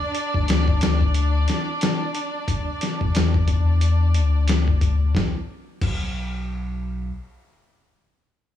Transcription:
Already playing: violin section D4 D5
0.15 closed hi-hat
0.34 sub bass D2, kick
0.48 snare, closed hi-hat
0.68 kick
0.81 sub bass D2, snare, closed hi-hat
1.01 kick
1.14 closed hi-hat
1.48 snare, closed hi-hat
1.81 snare, closed hi-hat
2.15 closed hi-hat
2.48 kick, closed hi-hat
2.81 snare, closed hi-hat
3.01 sub bass E2, kick
3.15 snare, closed hi-hat
3.34 kick
3.48 sub bass E2, kick, closed hi-hat
3.81 closed hi-hat
4.14 sub bass D2, closed hi-hat
4.48 snare, closed hi-hat
4.68 kick
4.81 kick, closed hi-hat
5.15 sub bass B1, kick, snare
5.82 sub bass B1, kick, crash

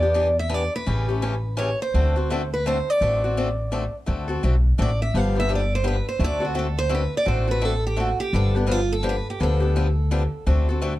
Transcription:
Already playing: upright bass E2, steel-string acoustic guitar D5
0.02 steel-string acoustic guitar B3 D4 G4
0.14 steel-string acoustic guitar E3 B3 D4 G4
0.39 steel-string acoustic guitar E5
0.49 steel-string acoustic guitar E3 B3 D4 G4
0.54 steel-string acoustic guitar D5
0.76 steel-string acoustic guitar B4
0.86 upright bass A1, steel-string acoustic guitar C#3 E3 A3 C#4 G4
1.08 steel-string acoustic guitar A3 C#4 G4
1.22 steel-string acoustic guitar C#3 E3 A3 C#4 G4
1.57 steel-string acoustic guitar C#3 E3 A3 C#4 G4 C#5
1.82 steel-string acoustic guitar C5
1.94 upright bass D2, steel-string acoustic guitar D3 A3 C4 F#4 A4
2.16 steel-string acoustic guitar C4 F#4 A4
2.30 steel-string acoustic guitar D3 A3 C4 F#4 A4
2.54 steel-string acoustic guitar B4
2.66 steel-string acoustic guitar D3 A3 C4 F#4 A4 C5
2.90 steel-string acoustic guitar D5
3.01 upright bass A1, steel-string acoustic guitar D3 A3 C4 F#4 A4
3.24 steel-string acoustic guitar C4 F#4 A4
3.37 steel-string acoustic guitar D3 A3 C4 F#4 A4
3.72 steel-string acoustic guitar D3 A3 C4 F#4 A4
4.06 upright bass D2, steel-string acoustic guitar D3 A3 C4 F#4 A4
4.28 steel-string acoustic guitar C4 F#4 A4
4.43 upright bass B1, steel-string acoustic guitar D3 A3 C4 F#4 A4
4.78 upright bass A1, steel-string acoustic guitar D3 A3 C4 F#4 A4 D5
5.02 steel-string acoustic guitar E5
5.14 upright bass G1, steel-string acoustic guitar D3 F3 B3 D4 G4 F5
5.35 steel-string acoustic guitar B3 D4 G4
5.40 steel-string acoustic guitar E5
5.49 steel-string acoustic guitar D3 F3 B3 D4 G4
5.55 steel-string acoustic guitar D5
5.75 steel-string acoustic guitar C5
5.84 steel-string acoustic guitar D3 F3 B3 D4 G4 B4
6.09 steel-string acoustic guitar C5
6.19 upright bass D2, steel-string acoustic guitar D3 A3 C4 F#4 A4
6.24 steel-string acoustic guitar D5
6.40 steel-string acoustic guitar C4 F#4 A4
6.45 steel-string acoustic guitar F#4
6.55 steel-string acoustic guitar D3 A3 C4 F#4 A4
6.79 steel-string acoustic guitar C5
6.89 steel-string acoustic guitar D3 A3 C4 F#4 A4
6.95 steel-string acoustic guitar B4
7.17 steel-string acoustic guitar D5
7.25 upright bass A1, steel-string acoustic guitar D3 A3 C4 F#4 A4 C5
7.47 steel-string acoustic guitar C4 F#4 A4 B4
7.61 steel-string acoustic guitar D3 A3 C4 F#4 A4
7.87 steel-string acoustic guitar G4
7.96 steel-string acoustic guitar D3 A3 C4 F#4 A4
8.20 steel-string acoustic guitar G4
8.33 upright bass G1, steel-string acoustic guitar D3 F3 B3 D4 G4 A4
8.55 steel-string acoustic guitar B3 D4 G4
8.67 steel-string acoustic guitar D3 F3 B3 D4 G4
8.71 steel-string acoustic guitar F4
8.92 steel-string acoustic guitar A4
9.03 steel-string acoustic guitar D3 F3 B3 D4 G4
9.09 steel-string acoustic guitar B4
9.30 steel-string acoustic guitar G4
9.40 upright bass D2, steel-string acoustic guitar D3 F3 B3 D4 G4 A4
9.60 steel-string acoustic guitar B3 D4 G4
9.76 steel-string acoustic guitar D3 F3 B3 D4 G4
10.11 steel-string acoustic guitar D3 F3 B3 D4 G4
10.46 upright bass D2, steel-string acoustic guitar D3 A3 C4 F#4 A4
10.69 steel-string acoustic guitar C4 F#4 A4
10.81 steel-string acoustic guitar D3 A3 C4 F#4 A4

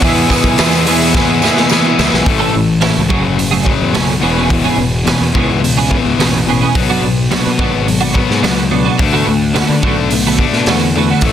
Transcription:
Already playing: transistor combo organ B4
0.00 overdriven electric guitar E2 B2 E3 G#3 B3 G#4, fingered electric bass E2, clean electric guitar E3 B3 E4 G#4, transistor combo organ E5 G#5 E6, kick, open hi-hat, tambourine
0.17 tambourine
0.28 overdriven electric guitar E2 B2 E3 G#3 B3 G#4, clean electric guitar E3 B3 E4 G#4, kick, open hi-hat, tambourine
0.44 fingered electric bass B1, kick, tambourine
0.57 overdriven electric guitar E2 B2 E3 G#3 B3 G#4, fingered electric bass E2, clean electric guitar E3 B3 E4 G#4, snare, open hi-hat, tambourine
0.73 tambourine
0.86 overdriven electric guitar E2 B2 E3 G#3 B3 G#4, clean electric guitar E3 B3 E4 G#4, open hi-hat, tambourine
1.00 tambourine
1.13 overdriven electric guitar E2 B2 E3 G#3 B3 G#4, clean electric guitar E3 B3 E4 G#4, kick, snare
1.41 overdriven electric guitar E2 B2 E3 G#3 B3 G#4, clean electric guitar E3 B3 E4 G#4, snare, tambourine
1.57 snare, tambourine
1.69 overdriven electric guitar E2 B2 E3 G#3 B3 G#4, clean electric guitar E3 B3 E4 G#4, snare, tambourine
1.97 fingered electric bass C#2, overdriven electric guitar E2 B2 E3 G#3 B3 G#4, clean electric guitar E3 B3 E4 G#4, snare, tambourine
2.12 fingered electric bass B1, snare, tambourine
2.26 fingered electric bass A1, overdriven electric guitar A2 E3 A3, kick, open hi-hat
2.39 clean electric guitar A3 C#4 E4 A4
2.53 fingered electric bass A1, overdriven electric guitar A2 E3
2.81 overdriven electric guitar A2 E3, clean electric guitar A3 C#4 E4 A4, snare, open hi-hat
2.98 fingered electric bass C#2
3.09 fingered electric bass F#1, overdriven electric guitar F#2 C#3 F#3, clean electric guitar F#3 A3 C#4 G#4, kick
3.25 muted clean electric guitar stroke
3.37 overdriven electric guitar F#2 C#3, muted clean electric guitar stroke, open hi-hat
3.51 clean electric guitar F#3 A3 C#4 G#4
3.64 overdriven electric guitar F#2 C#3 F#3, kick
3.82 fingered electric bass E2
3.92 fingered electric bass B1, overdriven electric guitar F#2 C#3, clean electric guitar F#3 A3 C#4 G#4, snare, open hi-hat
4.20 fingered electric bass E1, overdriven electric guitar E2 B2 E3, clean electric guitar E3 B3 C#4 G#4
4.36 clean electric guitar E3 B3 C#4 G#4
4.49 overdriven electric guitar E2 B2 E3, kick, open hi-hat
4.64 clean electric guitar E3 B3 C#4 G#4
4.77 fingered electric bass E1, overdriven electric guitar E2 B2
5.05 overdriven electric guitar E2 B2, clean electric guitar E3 B3 C#4 G#4, snare, open hi-hat
5.21 fingered electric bass E2
5.33 fingered electric bass C#2, overdriven electric guitar E2 B2 E3, clean electric guitar E3 B3 C#4 G#4, kick
5.50 muted clean electric guitar stroke
5.60 overdriven electric guitar E2 B2, muted clean electric guitar stroke, open hi-hat
5.77 clean electric guitar E3 B3 C#4 G#4
5.89 overdriven electric guitar E2 B2 E3, kick
6.05 fingered electric bass C#2
6.18 fingered electric bass A1, overdriven electric guitar E2 B2, clean electric guitar E3 B3 C#4 G#4, snare, open hi-hat
6.46 overdriven electric guitar E2 B2, clean electric guitar E3 B3 C#4 G#4
6.61 clean electric guitar E3 B3 C#4 G#4
6.75 fingered electric bass B1, overdriven electric guitar B2 F#3 B3, kick, open hi-hat
6.90 clean electric guitar F#3 B3 D4 F#4
7.03 fingered electric bass B1, overdriven electric guitar B2 F#3
7.31 overdriven electric guitar B2 F#3, clean electric guitar F#3 B3 D4 F#4, snare, open hi-hat
7.46 fingered electric bass B2
7.58 fingered electric bass G#1, overdriven electric guitar B2 F#3 B3, clean electric guitar F#3 B3 D4 F#4, kick
7.73 muted clean electric guitar stroke
7.87 overdriven electric guitar B2 F#3, muted clean electric guitar stroke, open hi-hat
8.01 clean electric guitar F#3 B3 D4 F#4
8.14 overdriven electric guitar B2 F#3 B3, kick
8.30 fingered electric bass G#2, snare
8.42 fingered electric bass C#2, overdriven electric guitar B2 F#3, clean electric guitar F#3 B3 D4 F#4, snare, open hi-hat
8.70 overdriven electric guitar B2 F#3, clean electric guitar F#3 B3 D4 F#4
8.85 clean electric guitar F#3 B3 D4 F#4
8.98 fingered electric bass D2, overdriven electric guitar D3 A3 D4, kick, open hi-hat
9.13 clean electric guitar D3 A3 B3 F#4
9.28 fingered electric bass D2, overdriven electric guitar D3 A3
9.54 overdriven electric guitar D3 A3, clean electric guitar D3 A3 B3 F#4, snare, open hi-hat
9.69 fingered electric bass D3
9.82 fingered electric bass B1, clean electric guitar D3 A3 B3 F#4, overdriven electric guitar D3 A3 D4, kick
9.97 muted clean electric guitar stroke
10.10 overdriven electric guitar D3 A3, muted clean electric guitar stroke, open hi-hat
10.27 clean electric guitar D3 A3 B3 F#4
10.39 overdriven electric guitar D3 A3 D4, kick
10.53 fingered electric bass B2, snare
10.66 fingered electric bass E2, overdriven electric guitar D3 A3, clean electric guitar D3 A3 B3 F#4, snare, open hi-hat
10.96 overdriven electric guitar D3 A3, clean electric guitar D3 A3 B3 F#4
11.10 clean electric guitar D3 A3 B3 F#4
11.20 fingered electric bass A1, overdriven electric guitar A2 E3, transistor combo organ C#5 E5 A5 E6, kick, open hi-hat, tambourine
11.24 overdriven electric guitar A3

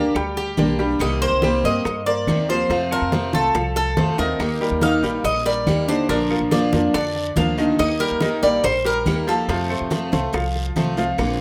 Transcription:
Already playing: upright bass D2, grand piano A#3 A#4 D5, steel-string acoustic guitar A#3 D4 G4, cuban tres G4
0.15 upright bass D2, grand piano G3 G4 G5, muted steel-string acoustic guitar stroke, high bongo, high conga, claves
0.36 cuban tres G4, high bongo, high conga
0.57 upright bass B1, steel-string acoustic guitar D3 G3 A#3 D4 G4, grand piano A#3 A#4 D5, high bongo, low bongo, high conga
0.79 grand piano G3 G4 G5, steel-string acoustic guitar A#3 D4 G4, high bongo
0.99 upright bass C2, steel-string acoustic guitar C3 D#3 A#3 C4 G4, cuban tres D#5, high bongo, high conga, claves
1.21 grand piano A#3 A#4 C5, cuban tres C5, high conga
1.32 upright bass C2
1.42 steel-string acoustic guitar C3 D#3 A#3 C4 G4, grand piano G3 G4 G5, high bongo, high conga
1.63 upright bass G2, grand piano A#3 A#4 C5, steel-string acoustic guitar A#3 C4 G4, cuban tres D#5, high bongo, high conga
1.85 upright bass G2, muted steel-string acoustic guitar stroke, high bongo, high conga, claves
2.06 grand piano A#3 A#4 C5, cuban tres D5, high bongo, high conga
2.27 upright bass D#2, steel-string acoustic guitar C3 D#3 A#3 C4 G4, high bongo, low bongo, high conga, claves
2.49 grand piano F3 F4 F5, steel-string acoustic guitar A#3 C4 G4, cuban tres C5, high bongo, high conga
2.69 upright bass F2, steel-string acoustic guitar C3 F3 A3 C4 F4, grand piano F3 F4 F5, high bongo, high conga
2.91 grand piano C4 C5 A5, cuban tres A#4, high conga, claves
3.01 upright bass F2
3.12 steel-string acoustic guitar C3 F3 A3 C4 F4, high bongo, high conga
3.33 upright bass C2, grand piano A3 A4 C5, steel-string acoustic guitar A3 C4 F4, cuban tres A4, high bongo, high conga
3.54 upright bass C2, grand piano F3 F4 F5, muted steel-string acoustic guitar stroke, high bongo, high conga, claves
3.76 cuban tres A4, high bongo, high conga
3.97 upright bass F2, steel-string acoustic guitar C3 F3 A3 C4 F4, grand piano A3 A4 C5, high bongo, high conga
4.18 upright bass D#2, grand piano D#3 D#4 D#5, steel-string acoustic guitar A3 C4 F4, cuban tres A#4, low bongo, high conga
4.39 upright bass D#2, steel-string acoustic guitar D#3 A#3 D#4 G4, high bongo, high conga, long guiro, claves
4.60 grand piano G3 G4 A#4, high conga
4.71 upright bass D#2
4.81 steel-string acoustic guitar D#3 A#3 D#4 G4, grand piano D#3 D#4 D#5, cuban tres F5, high bongo, high conga, short guiro
5.03 upright bass A#1, grand piano G3 G4 A#4, steel-string acoustic guitar A#3 D#4 G4, high bongo, high conga, short guiro
5.24 upright bass A#1, cuban tres D#5, muted steel-string acoustic guitar stroke, high bongo, high conga, long guiro, claves
5.45 grand piano G3 G4 A#4, cuban tres D5, high bongo, high conga
5.67 upright bass D#2, steel-string acoustic guitar D#3 A#3 D#4 G4, high bongo, low bongo, high conga, short guiro, claves
5.88 grand piano D3 D4 D5, steel-string acoustic guitar A#3 D#4 G4, cuban tres C5, high bongo, high conga, short guiro
6.09 upright bass A#1, grand piano D3 D4 D5, steel-string acoustic guitar F3 A#3 D4 F4, cuban tres A#4, high bongo, high conga, long guiro
6.30 grand piano F3 F4 A#4, high conga, claves
6.41 upright bass A#1
6.51 steel-string acoustic guitar F3 A#3 D4 F4, cuban tres D5, high bongo, high conga, short guiro
6.73 upright bass F2, grand piano F3 F4 A#4, steel-string acoustic guitar A#3 D4 F4, high bongo, high conga, short guiro
6.94 upright bass F2, grand piano D3 D4 D5, cuban tres D5, muted steel-string acoustic guitar stroke, high bongo, high conga, long guiro, claves
7.15 high bongo, high conga
7.36 upright bass D2, steel-string acoustic guitar F3 A#3 D4 F4, grand piano F3 F4 A#4, cuban tres F5, high bongo, low bongo, high conga, short guiro
7.57 grand piano D#3 D#4 D#5, steel-string acoustic guitar A#3 D4 F4, high bongo, high conga, short guiro
7.79 upright bass D#2, steel-string acoustic guitar D#3 A#3 D#4 G4, cuban tres D#5, high bongo, high conga, long guiro, claves
8.00 grand piano G3 G4 A#4, cuban tres A#4, high conga
8.11 upright bass D#2
8.21 grand piano D#3 D#4 D#5, steel-string acoustic guitar D#3 A#3 D#4 G4, high bongo, high conga, short guiro
8.42 upright bass A#1, grand piano G3 G4 A#4, steel-string acoustic guitar A#3 D#4 G4, cuban tres D5, high bongo, high conga, short guiro
8.63 upright bass A#1, cuban tres C5, muted steel-string acoustic guitar stroke, high bongo, high conga, long guiro, claves
8.84 grand piano G3 G4 A#4, cuban tres A#4, high bongo, high conga
9.06 upright bass D#2, steel-string acoustic guitar D#3 A#3 D#4 G4, high bongo, low bongo, high conga, short guiro, claves
9.27 grand piano F3 F4 F5, steel-string acoustic guitar A#3 D#4 G4, cuban tres A4, high bongo, high conga, short guiro
9.48 upright bass F2, steel-string acoustic guitar C3 F3 A3 C4 F4, grand piano F3 F4 F5, high bongo, high conga, long guiro
9.70 grand piano A3 A4 C5, high conga, claves
9.81 upright bass F2
9.90 steel-string acoustic guitar C3 F3 A3 C4 F4, high bongo, high conga, short guiro
10.12 upright bass C2, grand piano A3 A4 C5, steel-string acoustic guitar A3 C4 F4, high bongo, high conga, short guiro
10.33 upright bass C2, grand piano F3 F4 F5, muted steel-string acoustic guitar stroke, high bongo, high conga, long guiro, claves
10.55 high bongo, high conga
10.76 upright bass C2, steel-string acoustic guitar C3 F3 A3 C4 F4, grand piano A3 A4 C5, high bongo, high conga, short guiro
10.97 grand piano F3 F4 F5, steel-string acoustic guitar A3 C4 F4, low bongo, high conga, short guiro
11.18 upright bass A#1, steel-string acoustic guitar D3 A#3 C4 F4, high bongo, high conga, long guiro, claves

